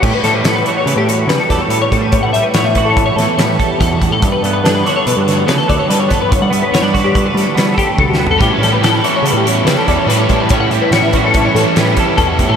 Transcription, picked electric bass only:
\new Staff \with { instrumentName = "Picked electric bass" } { \clef bass \time 5/4 \key a \mixolydian \tempo 4 = 143 a,16 r16 a,8 a,8 r8 cis16 a,8. cis16 r16 e,16 r16 a,8 a,8~ | a,16 a,16 a,16 r16 a,16 a,4~ a,16 a,16 r16 a,8 r8 e,8. a,16 | g,16 r16 g,8 g,8 r8 b,16 g,8. cis16 r16 d,16 r16 g8 g,8~ | g,16 g16 g16 r16 g,16 g,4~ g,16 g16 r16 g8 r8 d,8. e,16 |
a,16 r16 a,8 a,8 r8 cis16 a,8. cis16 r16 e,16 r16 a,8 a,8~ | a,16 a,16 a,16 r16 a,16 a,4~ a,16 a,16 r16 a,8 r8 e,8. a,16 | }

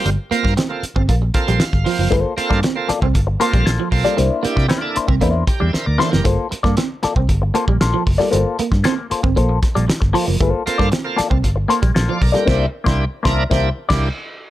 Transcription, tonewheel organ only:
\new Staff \with { instrumentName = "Tonewheel organ" } { \time 4/4 \key g \dorian \tempo 4 = 116 << { r2 r8 a'16 c''16 f''4 | r1 | r2 r8 <g' g'' bes''>16 <e'' g''>16 <bes' c'' e''>16 <bes' d''>16 <a' c''>16 <g' bes'>16 | r1 |
r1 | r2. r16 <d'' f''>16 <bes' d''>16 <g' bes'>16 | r1 | } \\ { r8 <bes c' f' bes'>8 r16 <bes c' f' a'>16 r16 <f' a'>16 <f' a'>16 r16 <bes c' f'>8 r8 <bes c' f' c''>8 | r8 <bes c' f' a'>8 r16 <bes c' f' a'>16 r16 <f' a'>16 <f' a'>16 r16 <bes c' f' a'>8 r8 <bes c' f' a'>8 | r8 <bes d' e' g'>8 r16 <bes d' e' a'>16 r16 <e' bes'>16 <e' g'>16 r4. r16 | r1 |
r1 | r8 <bes c' f' a'>8 r16 <bes c' f' a'>16 r16 <f' a'>16 <f' a'>16 r4. r16 | <bes d' e' g'>8 r16 <bes d' e' g'>8 r16 <bes d' e' bes'>8 <bes d' e' g'>8 r16 <bes d' e' g'>8 r8. | } >> }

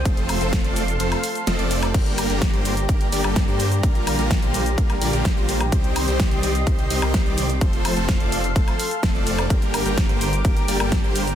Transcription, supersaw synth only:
\new Staff \with { instrumentName = "Supersaw synth" } { \time 4/4 \key g \minor \tempo 4 = 127 <f a c' a' c''>8. <f a c' a' c''>8 <f a c' a' d''>16 r8 <f a c' a' c''>16 r8. <f a c' a' ees''>16 <f a c' a' d''>8 r16 | <d g bes g' bes'>8. <d g bes g' bes'>8 <d g bes g' c''>16 r8 <d g bes g' bes'>16 r16 <d g bes g' d''>16 <d g bes g' a'>8 <d g bes g' c''>16 r8 | <d g bes f' bes'>8. <d g bes f' bes'>8 <d g bes f' c''>16 r8 <d g bes f' bes'>16 r16 <d g bes f' d''>16 <d g bes f' g'>8 <d g bes f' c''>16 r8 | <ees g c' g' c''>8. <ees g c' g' c''>8 <ees g c' g' d''>16 r8 <ees g c' g' c''>16 r16 <ees g c' g' ees''>16 <ees g c' g' bes'>8 <ees g c' g' d''>16 r8 |
<f a c' a' c''>8. <f a c' a' c''>8 <f a c' a' d''>16 r8 <f a c' a' c''>16 r8. <f a c' a' ees''>16 <f a c' a' d''>8 r16 | <d g bes g' bes'>8. <d g bes g' bes'>8 <d g bes g' c''>16 r8 <d g bes g' bes'>16 r16 <d g bes g' d''>16 <d g bes g' a'>8 <d g bes g' c''>16 r8 | }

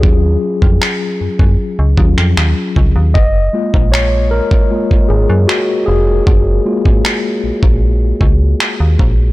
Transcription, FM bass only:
\new Staff \with { instrumentName = "FM bass" } { \clef bass \time 4/4 \key fis \major \tempo 4 = 77 dis,8 r16 eis,16 r8 fis,16 fis,16 r16 cis,16 dis,16 eis,16 dis,16 r16 cis,16 dis,16 | fis,,8 r16 ais,,4 r8. gis,,16 fis,16 r8 eis,,8 | fis,,8 r16 gis,,16 r8 ais,,16 ais,,8. cis,8 r16 dis,16 ais,,8 | }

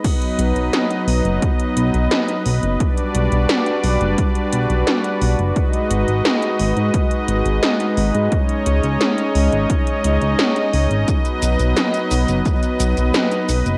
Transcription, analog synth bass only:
\new Staff \with { instrumentName = "Analog synth bass" } { \clef bass \time 4/4 \key b \major \tempo 4 = 87 r8 b,,16 b,,16 r8 b,,16 fis,,16 r8 b,,16 b,,16 r8 b,,16 fis,,16 | r8 b,,16 b,,16 r8 b,,16 fis,,16 r8 b,,16 b,,16 r8 b,,16 fis,,16 | r8 gis,,16 gis,,16 r8 gis,,16 gis,16 r8 gis,,16 gis,,16 r8 gis,,16 gis,16 | r8 cis,16 cis,16 r8 cis,16 gis,,16 r8 cis,16 cis,16 r8 cis,16 gis,,16 |
r8 b,,16 b,,16 r8 b,,16 fis,,16 r8 b,,16 b,,16 r8 b,,16 fis,,16 | }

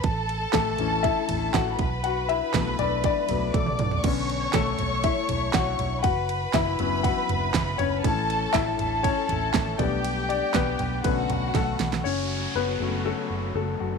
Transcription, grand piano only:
<<
  \new Staff \with { instrumentName = "Grand piano" } { \time 4/4 \key b \minor \tempo 4 = 120 r4 <a a'>4 <e' e''>4 <fis' fis''>4 | <fis' fis''>8 <e' e''>4 <d' d''>8 <d' d''>4 <a a'>8. r16 | r4 <a a'>4 <e' e''>4 <fis' fis''>4 | <fis' fis''>4 <e' e''>4 <fis' fis''>4. <cis' cis''>8~ |
<cis' cis''>4 <e' e''>4 <cis' cis''>4. <d' d''>8~ | <d' d''>8 <d' d''>8 <b b'>4 <b b'>4 <a a'>4 | <cis' cis''>4 <b b'>4 <a a'>4 <a a'>8 <fis fis'>8 | }
  \new Staff \with { instrumentName = "Grand piano" } { \time 4/4 \key b \minor r4. <e a cis'>4. r4 | r4 <fis a b>4. <fis a b>8 r4 | <d b cis'>4. r2 r8 | r4. <fis b cis'>8 r2 |
<e a cis'>8 r2. <g a b>8 | r2 <d a cis'>4. r8 | r4. <fis a cis'>8 r2 | }
>>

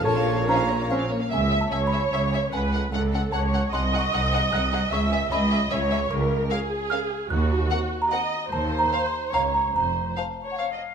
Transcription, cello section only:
\new Staff \with { instrumentName = "Cello section" } { \clef bass \time 3/4 \key bes \minor \tempo 4 = 149 bes,2~ bes,8 r8 | \key cis \minor cis,4 cis,4 cis,4 | cis,4 cis,4 cis,4 | bis,,4 bis,,4 bis,,4 |
cis,4 cis,4 cis,4 | \key bes \minor des,4 r2 | ees,4 r2 | ees,4 r4 des,4 |
f,4 r2 | }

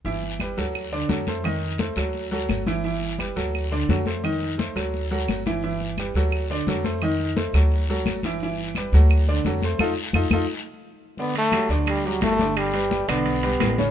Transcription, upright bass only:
\new Staff \with { instrumentName = "Upright bass" } { \clef bass \time 4/4 \key g \major \tempo 4 = 173 g,,4. d,4. f,4~ | f,4. d,4. g,,4~ | g,,4. d,4. f,4~ | f,4. d,4. g,,4~ |
g,,4. d,4. f,4~ | f,4. d,4. g,,4~ | g,,4. d,4. f,4 | f,8 r8 f,8 f,8 r2 |
r4. d,4. g,,4~ | g,,4. b,,4. a,,4 | }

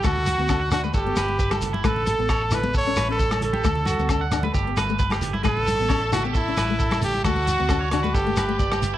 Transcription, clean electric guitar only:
\new Staff \with { instrumentName = "Clean electric guitar" } { \time 4/4 \key a \mixolydian \tempo 4 = 133 a'8 fis'8 a'16 fis''8 b'16 a'8 b'8 b'16 a'8 e'16 | b'8 a'8 cis''16 a'8 r16 a'8 b'8 a'16 a'8 g'16 | a'8 fis'8 a'16 fis''8 b'16 g'8 b'8 b'16 g'8 e'16 | b'8 a'8 cis''16 a'8 g'16 a'8 b'8 a'16 a'8 r16 |
a'8 fis'8 a'16 cis''8 b'16 a'8 b'8 d''16 g'8 e'16 | }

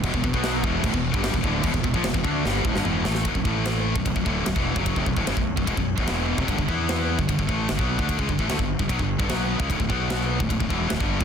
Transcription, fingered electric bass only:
\new Staff \with { instrumentName = "Fingered electric bass" } { \clef bass \time 4/4 \key b \minor \tempo 4 = 149 e,,16 e,,16 e,,16 b,,8. e,,8 d,,16 e,,8 g,,8 e,,16 d,,8 | e,,16 e,,16 e,,16 ais,,16 e,,16 e,,16 d,8 g,,8 d,,16 g,,16 e,,8 a,,8 | b,,,16 b,,,16 a,,4~ a,,16 b,,,16 b,,,16 b,,,16 d,,8 b,,,16 e,,8 fis,,16~ | fis,,16 eis,,16 b,,,16 d,,16 fis,,16 b,,,8 b,,,16 e,,16 b,,,8 b,,,16 e,,8. eis,,16 |
g,,16 g,,16 e,4~ e,16 g,,16 g,,16 g,,16 a,,8 g,,16 b,,8 d,16~ | d,16 cis,16 g,,16 a,,16 d,16 g,,8 g,,16 b,,16 g,,8 g,,16 b,,8. cis,16 | d,,16 d,,16 b,,4~ b,,16 d,,16 d,,16 d,,16 e,,8 d,,16 g,,8 a,,16 | }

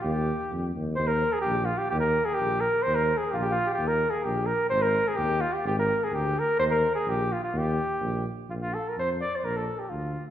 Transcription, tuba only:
\new Staff \with { instrumentName = "Tuba" } { \clef bass \time 2/4 \key ees \major \tempo 4 = 128 ees,4 f,8 ees,8 | ees,4 bes,,4 | ees,4 bes,,4 | ees,4 bes,,4 |
ees,4 bes,,4 | aes,,4 ees,4 | aes,,4 d,4 | ees,4 bes,,4 |
ees,4 bes,,4 | \key bes \major bes,,4 f,4 | bes,,4 d,4 | }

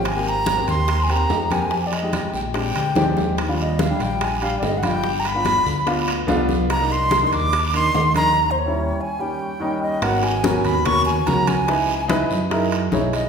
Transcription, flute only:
\new Staff \with { instrumentName = "Flute" } { \time 4/4 \key ees \major \tempo 4 = 144 aes''8 bes''4 c'''8~ \tuplet 3/2 { c'''8 aes''16 bes''8.~ } bes''8 aes''8~ | \tuplet 3/2 { aes''8 d''16 ees''8.~ } ees''8 g''8 g''4. r8 | r8 ees''8 f''8 g''8 aes''8 f''16. d''32 \tuplet 3/2 { ees''8 fis''16 g''8.~ } | \tuplet 3/2 { g''8 bes''16 b''8.~ } b''4. r4. |
bes''8 c'''8~ \tuplet 3/2 { c'''8 c'''16 d'''8.~ } d'''8 c'''4 bes''8~ | \tuplet 3/2 { bes''8 c''16 des''8.~ } des''8 aes''8 g''4. ees''8 | \key gis \minor fis''8 gis''4 b''8 cis'''8 gis''8 ais''8 gis''8~ | gis''4. r2 dis''8 | }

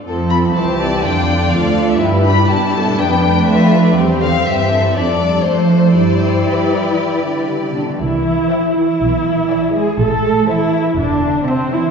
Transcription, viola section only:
\new Staff \with { instrumentName = "Viola section" } { \time 4/4 \key c \major \tempo 4 = 122 << { c'4 c'4 d'4 d'4 | e'8 d'8 d'2. | c'2 d'4 d'4 | e'2.~ e'8 d'8 |
e'4. e'2 gis'8 | a'4 e'4 d'4 c'8 e'8 | } \\ { f4 e4 d4 f4 | g2 b8 a4. | g8 d8 e4 f8 g8 a8 a8 | g2.~ g8 r8 |
r1 | r1 | } >> }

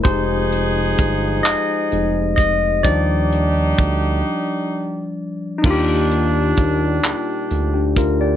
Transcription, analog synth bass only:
\new Staff \with { instrumentName = "Analog synth bass" } { \clef bass \time 6/8 \key ees \major \tempo 4. = 43 f,,4 g,,8 f,,8 f,,4 | ees,4 d,8 r4. | ees,4 ees,8 d,8 d,4 | }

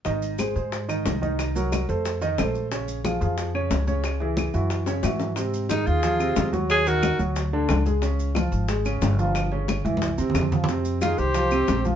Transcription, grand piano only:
\new Staff \with { instrumentName = "Grand piano" } { \time 4/4 \key aes \major \tempo 4 = 181 <ees ees' ees''>4 <aes aes' c''>8 <aes aes' c''>4 <ees ees' ees''>4 <ees ees' ees''>8~ | <ees ees' ees''>8 <ges ges' bes'>4 <a a' c''>4 <ees ees' ees''>8 <a a' c''>4 | <des des' des''>4 <f f' aes'>8 <f f' aes'>4 <des des' des''>4 <des des' des''>8~ | <des des' des''>8 <fes fes' aes'>4 <fes fes' ges'>4 <des des' des''>8 <fes fes' ges'>4 |
<c c'>4 <ees ees'>4 <f f'>8 <c c'>4 <ges ges'>8~ | <ges ges'>8 <ees ees'>4 <ges ges'>4 <d d'>4 <aes aes'>8 | <des des'>4 <f f'>4 <aes aes'>8 <des des'>4 <f f'>8~ | <f f'>8 <des des'>4 <fes fes'>4 <c c'>4 <f f'>8 |
<c c'>4 <ees ees'>4 <f f'>8 <c c'>4 <f f'>8 | }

